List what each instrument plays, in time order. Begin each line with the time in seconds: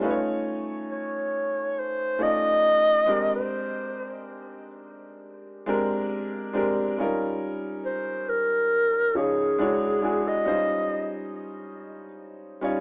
0.01 upright piano A3 C#4 D#4 F4 B4
0.11 upright piano C#5
0.92 clarinet C#5
1.80 clarinet C5
2.19 upright piano A3 C#4 D#4 F4 D5
2.23 clarinet D#5
2.28 upright piano D#5
3.06 upright piano G#3 C4 D4 G4 A#4
3.35 clarinet C5
5.66 upright piano G#3 C4 D4 G4 A#4
6.53 upright piano G#3 C4 D4 G4 A#4
6.98 upright piano G3 C#4 D#4 F4 A#4
7.86 clarinet C5
8.29 clarinet A#4
9.15 upright piano F3 C#4 D#4 F4 C#5, clarinet G#4
9.58 upright piano G#3 D4 E4 F#4 C#5
10.01 upright piano G#3 D4 E4 F#4 G#4
10.28 clarinet D#5
10.45 upright piano G3 C#4 D#4 F4 C5
12.61 upright piano G3 C#4 D#4 F4 C#5